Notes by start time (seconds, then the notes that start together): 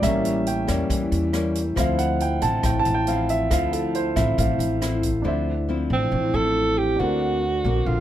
0.01 A1 A2 G3 A#3 C#4 E5, kick, cross-stick, closed hi-hat
0.25 closed hi-hat
0.47 G5, closed hi-hat
0.67 E2 G3 A#3 C#4, cross-stick, closed hi-hat
0.90 E2 E3, kick, closed hi-hat
1.12 E2, closed hi-hat
1.33 G3 A#3 C#4, cross-stick, closed hi-hat
1.55 closed hi-hat
1.76 D2 D3 F3 C4 E4 F5, kick, cross-stick, closed hi-hat
1.99 F#5, closed hi-hat
2.20 G5, closed hi-hat
2.41 A1 F3 C4 E4 A5, closed hi-hat
2.63 A1 A2 G5, kick, cross-stick, closed hi-hat
2.79 A5
2.85 A1, closed hi-hat
2.94 G5
3.07 F3 C4 E4 F5, closed hi-hat
3.29 E5, closed hi-hat
3.50 D2 D3 F3 C4 E4 F5, kick, cross-stick, closed hi-hat
3.73 A4, closed hi-hat
3.95 C5, closed hi-hat
4.16 A1 F3 C4 E4 E5, kick, cross-stick, closed hi-hat
4.38 A1 A2 F5, kick, closed hi-hat
4.59 A1, closed hi-hat
4.81 F3 C4 E4, cross-stick, closed hi-hat
5.03 kick, closed hi-hat
5.22 D2 D3 F3 C4 D4 E4
5.26 C5 E5
5.69 F3 C4 E4
5.90 A1 C4
6.12 A1 A2
6.34 A1 F3 C4 E4 A4
6.78 G4
6.96 D2 D3 A#3 D4 F#4 A#4 C5
7.00 C4 F#5
7.64 A#1 A#3 C4 F#4
7.86 A#1 D3 F4